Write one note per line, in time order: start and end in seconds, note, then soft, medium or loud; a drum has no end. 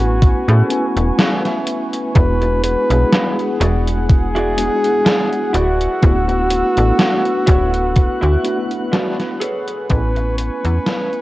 0.00 0.34 A1 loud
0.00 0.69 A3 medium
0.00 0.69 B3 medium
0.00 0.70 C#4 medium
0.00 0.71 E4 medium
0.00 1.63 F#4 loud
0.00 2.12 B4 medium
0.00 0.72 G#5 medium
0.00 2.12 G#5 medium
0.00 2.12 C#6 medium
0.00 closed hi-hat soft
0.22 muted clean electric guitar stroke soft
0.22 kick loud
0.22 closed hi-hat medium
0.48 0.63 A2 medium
0.48 0.84 C#4 loud
0.48 0.84 G#4 loud
0.48 0.84 A4 loud
0.48 0.84 B4 loud
0.48 closed hi-hat soft
0.69 2.10 A3 medium
0.69 2.10 B3 medium
0.69 2.10 C#4 medium
0.69 2.11 E4 medium
0.69 1.16 G#5 medium
0.69 2.11 G#5 medium
0.69 closed hi-hat medium
0.97 1.11 E1 medium
0.97 closed hi-hat soft
1.18 1.45 C#4 medium
1.18 1.45 G#4 medium
1.18 1.45 A4 medium
1.18 1.46 B4 loud
1.18 1.43 E5 medium
1.18 snare loud
1.18 closed hi-hat soft
1.45 2.12 E5 medium
1.45 snare soft
1.45 closed hi-hat soft
1.67 muted clean electric guitar stroke soft
1.67 closed hi-hat medium
1.93 closed hi-hat medium
2.15 2.76 E1 loud
2.15 2.84 G#3 medium
2.15 2.84 B3 medium
2.15 2.84 D4 medium
2.15 2.84 E4 medium
2.15 2.84 F#4 medium
2.15 5.51 G#4 medium
2.15 2.61 B4 loud
2.15 9.37 F#5 medium
2.15 muted clean electric guitar stroke loud
2.15 kick loud
2.15 closed hi-hat medium
2.41 muted clean electric guitar stroke medium
2.41 closed hi-hat soft
2.64 3.57 B4 loud
2.64 muted clean electric guitar stroke soft
2.64 closed hi-hat medium
2.89 3.05 B1 medium
2.89 4.52 G#3 medium
2.89 4.52 B3 medium
2.89 4.52 D4 medium
2.89 4.53 E4 medium
2.89 4.53 G#4 medium
2.89 closed hi-hat medium
3.13 snare loud
3.13 closed hi-hat medium
3.39 muted clean electric guitar stroke soft
3.39 closed hi-hat soft
3.60 4.69 E1 loud
3.60 3.87 E4 medium
3.60 3.87 F#4 medium
3.60 3.87 G#4 medium
3.60 3.88 D5 loud
3.60 closed hi-hat medium
3.87 closed hi-hat medium
4.09 5.51 G#4 loud
4.09 muted clean electric guitar stroke soft
4.09 kick loud
4.09 closed hi-hat medium
4.35 4.70 E4 loud
4.35 4.71 F#4 loud
4.35 4.71 G#4 loud
4.35 4.71 D5 loud
4.35 closed hi-hat soft
4.57 5.51 G#3 medium
4.57 5.51 B3 medium
4.57 5.52 D4 medium
4.57 5.52 E4 medium
4.57 5.52 F#4 medium
4.57 closed hi-hat medium
4.84 closed hi-hat soft
5.05 5.32 E4 medium
5.05 5.32 F#4 medium
5.05 5.32 G#4 medium
5.05 5.33 D5 loud
5.05 snare loud
5.05 closed hi-hat soft
5.33 closed hi-hat soft
5.53 5.87 D1 medium
5.53 6.13 E4 loud
5.53 6.13 F#4 medium
5.53 9.38 F#4 loud
5.53 6.13 B4 medium
5.53 11.21 B4 medium
5.53 6.13 D5 loud
5.53 7.46 E6 medium
5.53 closed hi-hat medium
5.81 closed hi-hat medium
6.02 6.63 D1 loud
6.02 6.71 A3 medium
6.02 6.71 B3 medium
6.02 6.71 D4 medium
6.02 6.71 E4 medium
6.02 6.72 F#4 medium
6.02 kick loud
6.02 closed hi-hat medium
6.28 muted clean electric guitar stroke medium
6.28 closed hi-hat soft
6.50 muted clean electric guitar stroke soft
6.50 closed hi-hat medium
6.76 6.92 A1 medium
6.76 8.38 A3 medium
6.76 8.39 B3 medium
6.76 8.39 D4 medium
6.76 8.40 E4 medium
6.76 8.40 A4 medium
6.76 closed hi-hat medium
6.99 snare loud
6.99 closed hi-hat medium
7.25 muted clean electric guitar stroke soft
7.25 closed hi-hat soft
7.47 8.08 D1 loud
7.47 7.74 E4 medium
7.47 7.74 F#4 medium
7.47 7.74 B4 medium
7.47 7.74 C#5 loud
7.47 9.39 F#6 medium
7.47 kick loud
7.47 closed hi-hat medium
7.74 closed hi-hat soft
7.95 muted clean electric guitar stroke soft
7.95 kick loud
7.95 closed hi-hat medium
8.21 8.37 D2 medium
8.21 8.57 E4 loud
8.21 8.57 F#4 loud
8.21 8.58 B4 loud
8.21 8.58 E5 loud
8.21 closed hi-hat soft
8.44 9.38 A3 medium
8.44 9.38 B3 medium
8.44 9.39 D4 medium
8.44 9.39 E4 medium
8.44 9.39 F#4 medium
8.44 closed hi-hat medium
8.71 closed hi-hat soft
8.92 9.19 E4 medium
8.92 9.19 F#4 medium
8.92 9.19 B4 medium
8.92 9.20 D5 loud
8.92 snare loud
8.92 closed hi-hat soft
9.19 snare soft
9.19 closed hi-hat soft
9.40 10.00 G#4 loud
9.40 10.00 A4 medium
9.40 10.00 B4 medium
9.40 10.00 C#5 loud
9.40 11.21 G#5 medium
9.40 11.21 C#6 medium
9.40 closed hi-hat medium
9.68 closed hi-hat medium
9.89 10.50 A1 loud
9.89 10.58 A3 medium
9.89 10.58 B3 medium
9.89 10.58 C#4 medium
9.89 10.59 E4 medium
9.89 10.35 B4 loud
9.89 10.59 G#5 medium
9.89 kick loud
9.89 closed hi-hat medium
10.15 muted clean electric guitar stroke medium
10.15 closed hi-hat soft
10.38 11.21 B4 loud
10.38 muted clean electric guitar stroke soft
10.38 closed hi-hat medium
10.63 10.79 E2 medium
10.63 11.21 A3 medium
10.63 11.21 B3 medium
10.63 11.21 C#4 medium
10.63 11.21 E4 medium
10.63 closed hi-hat medium
10.86 snare loud
10.86 closed hi-hat medium
11.12 muted clean electric guitar stroke soft
11.12 closed hi-hat soft